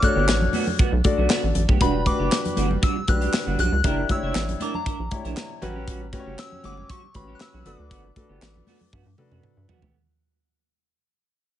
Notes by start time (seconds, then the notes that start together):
0.02 D4 F#4 A4 C#5 F#6, muted clean electric guitar stroke, kick, closed hi-hat, high conga
0.16 G1 A3 B3 G4
0.28 A1, snare, clap, closed hi-hat, muted conga
0.41 muted clean electric guitar stroke, low conga
0.53 A3 B3 F#4, open hi-hat, muted conga, high conga
0.67 muted clean electric guitar stroke, low conga
0.79 A3 B3 F#4, kick, closed hi-hat
0.92 B1, muted clean electric guitar stroke
1.04 D4 F#4 A4 D5, muted clean electric guitar stroke, kick, closed hi-hat, muted conga, high conga
1.18 B1 A3 B3 F#4
1.29 A3 B3 F#4, snare, clap, closed hi-hat, muted conga
1.43 A1, muted clean electric guitar stroke
1.55 A1, muted clean electric guitar stroke, closed hi-hat, muted conga, low conga
1.68 B1 A3 B3 G4, kick, high conga
1.80 E1 G3 D4 F#4 G4 B4 B5, kick, closed hi-hat, muted conga
1.94 muted clean electric guitar stroke
2.06 D4 F#4 G4 B4 D6, muted clean electric guitar stroke, kick, closed hi-hat, muted conga, high conga
2.19 F#1 G3 D4 G4
2.32 snare, clap, closed hi-hat
2.45 muted clean electric guitar stroke, closed hi-hat, low conga
2.56 G1 G3 D4 F#4, closed hi-hat, high conga
2.70 muted clean electric guitar stroke, low conga
2.82 G3 D4 F#4 E6, kick, closed hi-hat, muted conga
2.96 muted clean electric guitar stroke
3.07 B1 D4 F#4 G4 B4 F#6, muted clean electric guitar stroke, kick, closed hi-hat, high conga
3.21 G3 D4 G4, closed hi-hat
3.33 muted clean electric guitar stroke, snare, clap, closed hi-hat, muted conga
3.46 G1 G3 D4 F#4
3.58 B1 G3 D4 F#4 F#6, closed hi-hat, low conga
3.72 C#2, muted clean electric guitar stroke
3.84 F#1 D4 E4 G4 A#4, kick, closed hi-hat, muted conga
3.97 muted clean electric guitar stroke
4.09 D4 E4 G4 C#5 E6, muted clean electric guitar stroke, kick, closed hi-hat, muted conga, high conga
4.23 F#1 D4 E4 C#5
4.35 A1, snare, clap, closed hi-hat, muted conga
4.48 muted clean electric guitar stroke, closed hi-hat, low conga
4.60 D4 E4 A#4 D6, closed hi-hat, high conga
4.74 A#5, muted clean electric guitar stroke, low conga
4.85 D4 E4 A#4, kick, closed hi-hat, muted conga
4.99 A#1, muted clean electric guitar stroke
5.11 D4 E4 G4 C#5, muted clean electric guitar stroke, kick, closed hi-hat, muted conga, high conga
5.25 A#1 D4 E4 A#4, closed hi-hat
5.37 muted clean electric guitar stroke, snare, clap, closed hi-hat, muted conga
5.50 muted clean electric guitar stroke
5.62 A1 G3 C#4 F#4 G4 B4, closed hi-hat, muted conga, low conga
5.76 G3 C#4 G4
5.88 G3 C#4 F#4, kick, closed hi-hat
6.01 muted clean electric guitar stroke
6.13 C#4 F#4 G4 B4, muted clean electric guitar stroke, kick, closed hi-hat, muted conga, high conga
6.20 C#5
6.26 F#1 G3 C#4 G4
6.38 E6, snare, clap, closed hi-hat
6.52 muted clean electric guitar stroke, low conga
6.63 G1 G3 C#4 F#4 D6, closed hi-hat, muted conga, high conga
6.77 muted clean electric guitar stroke, low conga
6.89 G3 C#4 F#4 C#6, kick, closed hi-hat, muted conga
7.02 muted clean electric guitar stroke
7.14 A1 C#4 F#4 G4 B4 B5, muted clean electric guitar stroke, kick, closed hi-hat, muted conga, high conga
7.28 G3 C#4 G4
7.35 F#6
7.40 E6, muted clean electric guitar stroke, snare, clap, closed hi-hat, muted conga
7.53 B1 G3 C#4 F#4
7.65 G1 A3 B3 D4 F#4 A4 B4 D6, closed hi-hat, muted conga, low conga
7.79 D2, muted clean electric guitar stroke
7.90 G1 A3 B3 F#4, kick, closed hi-hat
8.04 muted clean electric guitar stroke
8.16 D4 F#4 A4 B4, muted clean electric guitar stroke, kick, closed hi-hat, muted conga, high conga
8.29 G1 A3 B3 G4
8.42 A1, snare, clap, closed hi-hat, muted conga
8.55 muted clean electric guitar stroke, low conga
8.67 A3 B3 F#4, open hi-hat, muted conga, high conga
8.80 muted clean electric guitar stroke, low conga
8.92 G2 A3 B3 F#4, kick, high tom
9.06 G2, muted clean electric guitar stroke
9.18 D4 F#4 A4 B4, muted clean electric guitar stroke, mid tom, high conga
9.31 F#2 A3 B3 F#4, mid tom
9.43 muted clean electric guitar stroke, mid tom
9.57 G2, muted clean electric guitar stroke
9.69 A3 B3 F#4, floor tom, muted conga, low conga
9.82 D2 A3 B3 G4, floor tom